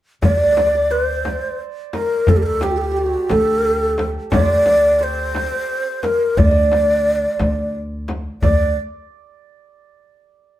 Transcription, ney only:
0.23 0.93 D5 loud
0.91 1.04 B4 medium
1.04 1.60 C5 medium
1.95 2.31 A#4 medium
2.29 2.38 A4 medium
2.37 2.44 G4 medium
2.43 2.65 A4 medium
2.43 2.47 A#4 medium
2.63 2.73 G4 medium
2.71 2.79 F#4 medium
2.78 2.99 G4 medium
2.78 2.82 A4 medium
2.97 3.33 F#4 medium
3.31 4.08 A4 medium
4.32 4.99 D5 loud
4.99 5.04 D5 medium
5.03 6.05 C5 loud
6.03 6.39 A#4 medium
6.38 7.75 D5 medium
8.42 8.74 D5 medium

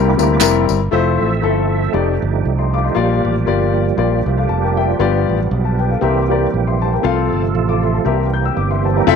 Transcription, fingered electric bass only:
0.00 0.14 C2 loud
0.19 0.38 D2 medium
0.41 0.65 F1 medium
0.70 0.89 G1 medium
0.93 1.17 F1 loud
1.21 1.40 A1 medium
1.43 1.86 G1 medium
1.94 2.18 F1 medium
2.22 2.42 G1 medium
2.45 2.89 C2 medium
2.96 3.20 A#1 medium
3.25 3.44 A1 medium
3.47 3.90 G1 medium
3.98 4.22 A#1 medium
4.26 4.45 C2 medium
4.49 4.93 F1 medium
5.00 5.24 G1 loud
5.29 5.48 A1 medium
5.51 5.95 B1 medium
6.02 6.46 C2 medium
6.54 6.97 A#1 medium
7.04 7.29 C2 medium
7.32 7.52 G1 medium
7.55 7.98 A1 medium
8.06 8.49 C2 medium
8.57 9.00 G1 medium
9.07 9.16 F1 loud

